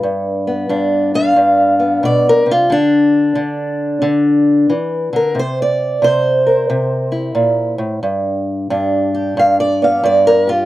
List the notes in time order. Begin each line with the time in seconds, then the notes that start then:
Already playing: G3 B3 B4
0.03 G2
0.47 B3
0.69 G2 D4
1.14 D4 F5
1.36 G2
1.79 B3
2.03 B2 D5
2.29 A#4
2.46 C3
2.51 F4
2.70 D3 D4
3.35 D3
4.02 D3
4.70 E3
5.13 D3 A#4
5.35 C3
5.39 C5
5.62 D5
6.02 C3 C5
6.47 A#4
6.70 C3
7.12 E4
7.35 A#2
7.78 A2
8.03 G2
8.70 G2 D4
9.15 G4
9.37 G2 F5
9.60 D5
9.82 B3 F5
10.04 G2 D5
10.27 A#4
10.47 F4 G4